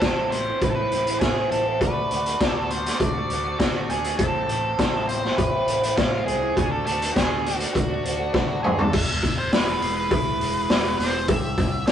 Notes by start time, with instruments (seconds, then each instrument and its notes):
Already playing: lead electric guitar A4
0.01 fingered electric bass A1, clean electric guitar E3 A3 C4 E4, kick, snare, closed hi-hat
0.30 clean electric guitar E3 A3 C4, lead electric guitar C5, closed hi-hat
0.34 clean electric guitar E4
0.46 clean electric guitar A3 C4 E4
0.61 fingered electric bass A1, lead electric guitar B4, kick, closed hi-hat
0.70 lead electric guitar A4
0.75 clean electric guitar C4 E4, lead electric guitar B4
0.80 clean electric guitar A3
0.91 fingered electric bass A1, clean electric guitar E3 A3 C4 E4, closed hi-hat
1.07 clean electric guitar A3 C4 E4, closed hi-hat
1.20 clean electric guitar A2 E3 A3 C4, fingered electric bass A2, lead electric guitar G#4, kick, snare, closed hi-hat
1.24 clean electric guitar E4
1.35 clean electric guitar A3 C4 E4
1.50 fingered electric bass A1, clean electric guitar E3 A3 C4 E4, lead electric guitar A4, closed hi-hat
1.65 clean electric guitar A3 C4 E4
1.80 fingered electric bass D2, clean electric guitar D3 A3 D4 F#4, lead electric guitar B4, kick, closed hi-hat
2.10 fingered electric bass D2, clean electric guitar D3 A3 D4 F#4, closed hi-hat
2.26 closed hi-hat
2.39 fingered electric bass D2, clean electric guitar D3 A3 D4, kick, snare, closed hi-hat
2.43 clean electric guitar F#4, lead electric guitar A4
2.70 clean electric guitar D3 A3 D4, lead electric guitar C5, closed hi-hat
2.74 clean electric guitar F#4
2.85 clean electric guitar A3 D4 F#4, snare, closed hi-hat
3.00 fingered electric bass D2, lead electric guitar D5, kick, closed hi-hat
3.14 clean electric guitar A3 D4 F#4
3.30 fingered electric bass D2, clean electric guitar D3 A3 D4 F#4, closed hi-hat
3.44 clean electric guitar A3 D4 F#4
3.59 clean electric guitar D3 A3 D4 F#4, fingered electric bass D3, lead electric guitar F#4, kick, snare, closed hi-hat
3.74 clean electric guitar A3 D4 F#4
3.89 fingered electric bass D2, clean electric guitar D3 A3 D4 F#4, lead electric guitar G#4, closed hi-hat
4.04 clean electric guitar A3 D4 F#4, closed hi-hat
4.18 fingered electric bass A1, clean electric guitar A2 E3 A3 C4, lead electric guitar A4, kick, closed hi-hat
4.22 clean electric guitar E4
4.48 fingered electric bass A1, clean electric guitar E3 A3 C4 E4, closed hi-hat
4.78 fingered electric bass A1, clean electric guitar A2 E3 A3 C4 E4, kick, snare, closed hi-hat
5.07 clean electric guitar E3 A3 C4 E4, lead electric guitar C5, closed hi-hat
5.22 clean electric guitar A3 C4 E4, snare
5.37 fingered electric bass A1, lead electric guitar B4, kick, closed hi-hat
5.52 clean electric guitar C4 E4
5.56 clean electric guitar A3
5.68 fingered electric bass A1, clean electric guitar E3 A3 C4 E4, closed hi-hat
5.82 clean electric guitar A3 C4 E4, closed hi-hat
5.96 clean electric guitar A2 E3 A3 C4, fingered electric bass A2, lead electric guitar F4, kick, snare, closed hi-hat
6.00 clean electric guitar E4
6.12 clean electric guitar A3 C4 E4
6.26 fingered electric bass C2, clean electric guitar E3 A3 C4 E4, lead electric guitar G#4, closed hi-hat
6.40 clean electric guitar A3 C4 E4
6.55 fingered electric bass D2, clean electric guitar D3 A3 D4 F#4, kick, closed hi-hat
6.72 lead electric guitar A4
6.85 fingered electric bass D2, clean electric guitar D3 A3 D4 F#4, lead electric guitar A4, closed hi-hat
7.02 closed hi-hat
7.13 fingered electric bass D2, clean electric guitar D3 A3 D4, lead electric guitar G#4, kick, snare, closed hi-hat
7.18 clean electric guitar F#4
7.44 clean electric guitar D3 A3 D4 F#4, closed hi-hat
7.57 clean electric guitar D4 F#4, lead electric guitar F#4, closed hi-hat
7.61 clean electric guitar A3
7.74 fingered electric bass D2, lead electric guitar F#4, kick, closed hi-hat
7.88 clean electric guitar A3 D4 F#4
8.03 fingered electric bass D2, clean electric guitar D3 A3 D4 F#4, closed hi-hat
8.17 clean electric guitar A3 D4 F#4
8.32 clean electric guitar D3 A3 D4 F#4, fingered electric bass D3, kick, snare
8.47 clean electric guitar A3 D4 F#4
8.62 fingered electric bass D2, clean electric guitar D3 A3 D4 F#4, lead electric guitar G#4, mid tom
8.76 clean electric guitar A3 D4 F#4, lead electric guitar A4, floor tom
8.92 fingered electric bass E1, clean electric guitar E2, lead electric guitar E5, kick, crash
9.23 fingered electric bass E1, kick, open hi-hat
9.38 lead electric guitar C5
9.51 fingered electric bass E1, clean electric guitar E3, lead electric guitar B4, snare, open hi-hat
9.81 fingered electric bass E1, clean electric guitar G#3, open hi-hat
9.96 lead electric guitar B4
10.11 fingered electric bass B1, clean electric guitar E4, kick, open hi-hat
10.40 fingered electric bass E1, clean electric guitar G#3, open hi-hat
10.70 fingered electric bass E1, clean electric guitar B3, snare, open hi-hat
10.98 fingered electric bass E1, clean electric guitar E3, lead electric guitar C5, snare, open hi-hat
11.28 fingered electric bass C2, clean electric guitar C3, lead electric guitar E5, kick, open hi-hat
11.58 fingered electric bass C2, kick, open hi-hat
11.87 fingered electric bass C2, clean electric guitar E3, lead electric guitar D5, snare, open hi-hat